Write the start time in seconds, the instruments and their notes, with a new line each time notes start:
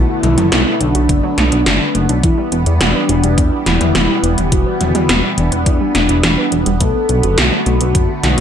Already playing: analog synth pad D3 A3 B3, soft synth lead E4
0.09 synth arpeggio sound F#4
0.23 analog synth bass B1, synth arpeggio sound D3, closed hi-hat, mid tom
0.38 analog synth bass F#1, synth arpeggio sound F#3, closed hi-hat, mid tom
0.52 analog synth bass B1, synth arpeggio sound A3, snare, closed hi-hat
0.66 synth arpeggio sound B3
0.81 analog synth bass B1, synth arpeggio sound D3, soft synth lead D4, closed hi-hat
0.95 analog synth bass B1, synth arpeggio sound F#4, closed hi-hat
1.09 analog synth bass F#1, synth arpeggio sound D3, kick, closed hi-hat
1.23 synth arpeggio sound F#3
1.38 analog synth bass B1, synth arpeggio sound A3, snare, closed hi-hat
1.52 analog synth bass B1, synth arpeggio sound B3, closed hi-hat
1.66 analog synth bass F#1, synth arpeggio sound D3, snare, closed hi-hat
1.81 synth arpeggio sound D3
1.95 analog synth bass F#1, synth arpeggio sound A3, closed hi-hat
2.09 analog synth bass B1, synth arpeggio sound D4, closed hi-hat
2.23 analog synth bass E1, synth arpeggio sound E3, analog synth pad E3 G3, soft synth lead E4, kick, closed hi-hat
2.38 synth arpeggio sound G3
2.52 analog synth bass E1, synth arpeggio sound B3, closed hi-hat
2.66 analog synth bass E2, synth arpeggio sound E4, closed hi-hat
2.81 analog synth bass E1, synth arpeggio sound E3, soft synth lead D4, snare, closed hi-hat
2.95 synth arpeggio sound B4
3.09 analog synth bass E1, synth arpeggio sound E3, closed hi-hat
3.23 analog synth bass E1, synth arpeggio sound G3, closed hi-hat
3.38 analog synth bass E2, synth arpeggio sound B3, kick, closed hi-hat
3.52 synth arpeggio sound E4
3.66 analog synth bass E1, synth arpeggio sound E3, soft synth lead E4, snare, closed hi-hat
3.81 analog synth bass E1, synth arpeggio sound B4, closed hi-hat, mid tom
3.95 analog synth bass E1, synth arpeggio sound E3, snare, closed hi-hat
4.09 synth arpeggio sound G3
4.23 analog synth bass E1, synth arpeggio sound B3, closed hi-hat
4.38 analog synth bass E1, synth arpeggio sound E4, closed hi-hat, mid tom
4.52 analog synth bass E1, synth arpeggio sound E3, soft synth lead F#4, kick, closed hi-hat
4.66 synth arpeggio sound B4
4.81 analog synth bass E1, synth arpeggio sound E3, closed hi-hat, mid tom
4.95 analog synth bass E2, synth arpeggio sound G3, closed hi-hat, mid tom
5.09 analog synth bass E1, synth arpeggio sound B3, snare, closed hi-hat
5.24 synth arpeggio sound E4
5.38 analog synth bass E1, synth arpeggio sound E3, soft synth lead D4, closed hi-hat
5.52 analog synth bass E1, synth arpeggio sound B4, closed hi-hat
5.66 analog synth bass E2, synth arpeggio sound E3, kick, closed hi-hat
5.81 synth arpeggio sound G3
5.95 analog synth bass E1, synth arpeggio sound B3, snare, closed hi-hat
6.09 analog synth bass E1, synth arpeggio sound E4, closed hi-hat
6.23 analog synth bass E1, synth arpeggio sound E3, snare, closed hi-hat
6.38 synth arpeggio sound B4
6.52 analog synth bass E1, synth arpeggio sound E3, closed hi-hat
6.66 analog synth bass E1, synth arpeggio sound G3, closed hi-hat
6.81 analog synth bass B1, analog synth pad D3 A3, synth arpeggio sound A3, soft synth lead A4, kick, closed hi-hat
6.95 synth arpeggio sound B3
7.09 analog synth bass B1, synth arpeggio sound D3, closed hi-hat
7.23 analog synth bass F#1, synth arpeggio sound F#4, closed hi-hat
7.38 analog synth bass B1, synth arpeggio sound D3, soft synth lead F#4, snare, closed hi-hat
7.52 synth arpeggio sound F#3
7.66 analog synth bass B1, synth arpeggio sound A3, closed hi-hat
7.81 analog synth bass B1, synth arpeggio sound B3, closed hi-hat
7.95 analog synth bass F#1, synth arpeggio sound D3, kick, closed hi-hat
8.09 synth arpeggio sound F#4
8.23 analog synth bass B1, synth arpeggio sound D3, soft synth lead F#4, snare, closed hi-hat